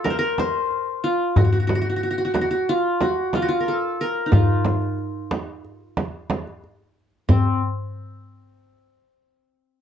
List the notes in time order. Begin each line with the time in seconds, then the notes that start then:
Already playing: F4 A4
0.04 A#4, darbuka tek, frame drum
0.10 C5
0.19 A#4
0.38 C5, darbuka tek, frame drum
0.71 darbuka ka
1.04 F4
1.36 F#4, darbuka dum, frame drum
1.45 F#4
1.52 F#4
1.60 F#4
1.67 F#4, darbuka tek, frame drum
1.75 F#4
1.82 F#4, darbuka ka
1.90 F#4
1.96 F#4
2.02 F#4, darbuka ka
2.11 F#4
2.18 F#4
2.25 F#4
2.34 F#4, darbuka tek, frame drum
2.41 F#4
2.51 F#4
2.69 F4
3.01 F#4, darbuka tek, frame drum
3.33 F4, darbuka tek, frame drum
3.42 F#4
3.48 F4
3.60 A#4
3.67 A4, darbuka ka
4.01 A#4
4.26 D#4
4.32 F4, frame drum, darbuka dum
4.65 darbuka tek, frame drum
4.82 darbuka ka
4.99 darbuka ka
5.31 darbuka tek, frame drum
5.65 darbuka ka
5.97 darbuka tek, frame drum
6.30 darbuka tek, frame drum
6.47 darbuka ka
6.64 darbuka ka
7.29 C4, frame drum, darbuka dum